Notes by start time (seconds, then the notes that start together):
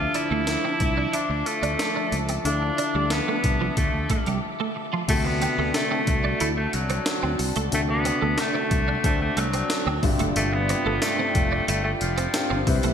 Already playing: D3 F3 D4 F4 A4 E5 A5 D6
0.14 D4 E4, closed hi-hat
0.31 D2 A3
0.47 snare, closed hi-hat
0.64 C4
0.80 C2, muted clean electric guitar stroke, kick, closed hi-hat
0.97 D4
1.13 D4 E4, closed hi-hat
1.30 D2, muted clean electric guitar stroke
1.46 A3, closed hi-hat
1.62 D2 D4, closed hi-hat
1.79 snare, closed hi-hat
1.96 D4
2.12 C#2, muted clean electric guitar stroke, closed hi-hat
2.29 C4, closed hi-hat
2.44 D2 D3 D4 E4 F4 A4, closed hi-hat
2.62 muted clean electric guitar stroke
2.78 D4, closed hi-hat
2.95 D2 G3
3.10 B3, snare, closed hi-hat
3.28 A3
3.44 C2, muted clean electric guitar stroke, kick, closed hi-hat
3.61 F3
3.77 D2 A3, muted clean electric guitar stroke, kick, closed hi-hat
3.94 D2
4.10 A3, kick, closed hi-hat
4.26 C2 G3, closed hi-hat
4.60 A3
4.76 muted clean electric guitar stroke
4.93 F3
5.08 D2 C3 D3 A3 D4 F#4 A4 D5 A5, kick, closed hi-hat, crash
5.26 B3, muted clean electric guitar stroke
5.42 C4, closed hi-hat
5.58 D2 A3
5.74 A3, snare, closed hi-hat
5.91 C4
6.07 C2, muted clean electric guitar stroke, kick, closed hi-hat
6.24 D4
6.40 D2 A3 E4, closed hi-hat
6.57 A3, muted clean electric guitar stroke
6.73 C2 F#3, closed hi-hat
6.90 C4, closed hi-hat
7.06 snare, closed hi-hat
7.23 D2 C4
7.39 C2, muted clean electric guitar stroke, open hi-hat
7.56 C#2 A3, closed hi-hat
7.71 D2 C3 D3 A3 D4 F#4 A4, closed hi-hat
7.89 B3, muted clean electric guitar stroke
8.05 C4, closed hi-hat
8.22 D2 A3
8.38 A3, snare, closed hi-hat
8.55 C4
8.71 C2, muted clean electric guitar stroke, kick, closed hi-hat
8.88 D4
9.04 D2 A3 C4 D4 F#4 A4, muted clean electric guitar stroke, kick, closed hi-hat
9.22 A3
9.37 C2 F#3 A3, closed hi-hat
9.53 C4, closed hi-hat
9.70 snare, closed hi-hat
9.87 D2 C4
10.02 G1 G2 C3 D4 F4 G4 G5, muted clean electric guitar stroke, kick, open hi-hat
10.19 F#1 A3, closed hi-hat
10.36 G1 A3, closed hi-hat
10.53 B3, muted clean electric guitar stroke
10.69 C4, closed hi-hat
10.86 G1 A3
11.02 A3, snare, closed hi-hat, tambourine
11.19 C4
11.35 F1, muted clean electric guitar stroke, kick, closed hi-hat
11.52 D4
11.68 G1 A3 E4, closed hi-hat
11.84 A3, muted clean electric guitar stroke
12.01 F1 F3, closed hi-hat
12.18 C4, closed hi-hat
12.34 C4 D4 F4 G4, snare, closed hi-hat, tambourine
12.50 G1 C4
12.66 C2 C3 C4 E4 G4 B4 E5 B5, muted clean electric guitar stroke, kick, open hi-hat
12.83 B1 A3, closed hi-hat